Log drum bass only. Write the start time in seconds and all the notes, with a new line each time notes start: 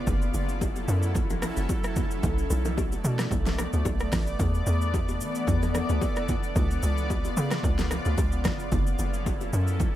0.07 F#1
0.34 F#1
0.88 F#2
1.15 A1
1.57 F#1
2.23 B1
2.50 B1
3.04 B2
3.31 B1
3.73 D2
3.86 B1
4.13 A1
4.40 E2
4.67 E2
5.21 E3
5.48 E2
5.90 D2
6.56 C#2
6.83 C#2
7.37 C#3
7.64 C#2
8.06 D2
8.18 C#2
8.45 F#1
8.72 F#1
8.99 F#1
9.53 F#2
9.80 A1